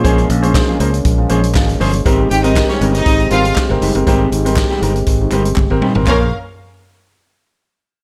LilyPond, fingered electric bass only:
\new Staff \with { instrumentName = "Fingered electric bass" } { \clef bass \time 4/4 \key bes \dorian \tempo 4 = 119 bes,,8 bes,,8. r16 des,8 bes,,8 bes,,8 aes,,8 g,,8 | aes,,8 aes,,8. r16 g,,8 aes,,8 aes,,8 r16 g,,16 ges,,16 g,,16 | aes,,8 aes,,8. r16 g,,8 aes,,8 g,,8 g,,16 aes,,16 r16 aes,,16 | bes,,8 r2. r8 | }